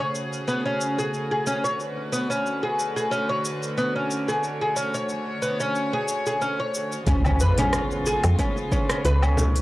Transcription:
Already playing: C#3 A3 F#4 G#4
0.00 C#5
0.15 shaker
0.33 shaker
0.48 B3, shaker
0.66 C#4
0.81 shaker
0.99 G#4, shaker
1.14 shaker
1.31 G#4
1.47 C#4, shaker
1.64 C#5, shaker
1.79 D3 B4, shaker
2.12 B3, shaker
2.30 C#4, shaker
2.46 shaker
2.63 G#4
2.79 shaker
2.96 G#4, shaker
3.11 C#4, shaker
3.29 C#5
3.45 shaker
3.63 shaker
3.77 B3, shaker
3.96 C#4
4.11 shaker
4.28 G#4, shaker
4.42 C#5, shaker
4.61 G#4
4.76 C#4, shaker
4.94 C#5, shaker
5.09 shaker
5.42 B3, shaker
5.60 C#4, shaker
5.75 shaker
5.93 G#4
6.08 shaker
6.26 G#4, shaker
6.41 C#4, shaker
6.60 C#5
6.74 shaker
6.92 shaker
7.07 C#2 C#3 G#3 B3 C#4 F4, kick, open hi-hat, impact, shaker
7.25 C#4, high conga, low woodblock, shaker
7.40 F2 B4, shaker
7.58 C#4, open hi-hat, low conga, shaker
7.73 cross-stick, open hi-hat, shaker
7.91 shaker
8.06 G#4, shaker
8.24 F2, open hi-hat, high conga, low woodblock, shaker
8.39 C#4, kick, open hi-hat, high bongo, shaker
8.57 shaker
8.72 C#4, kick, high bongo, shaker
8.90 C#4, cross-stick, open hi-hat, shaker
9.05 C#2 B4, open hi-hat, shaker
9.23 C#4, low woodblock, shaker
9.37 low conga, shaker
9.56 open hi-hat, shaker

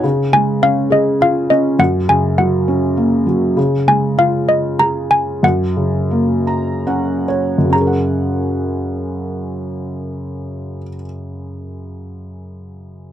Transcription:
0.03 C#3
0.33 G#3 G#5
0.62 C#4 F5
0.90 G#4 D#5
1.21 F4 F5
1.50 C#4 D#5
1.79 F#2 F#5
2.08 C#3 G#5
2.38 F#3 F#5
2.68 C#4
2.97 A#3
3.27 F#3
3.57 C#3
3.87 G#3 G#5
4.18 F4 F5
4.49 D#5
4.79 G#4 A#5
5.11 G#5
5.43 F#2 F#5
5.76 C#3
6.11 A#3
6.47 A#5
6.87 C#4 F#5
7.28 C#5
7.58 F#2
7.64 C#3
7.70 C#4 A#5
7.76 G#4
7.81 A#4
7.87 F#5

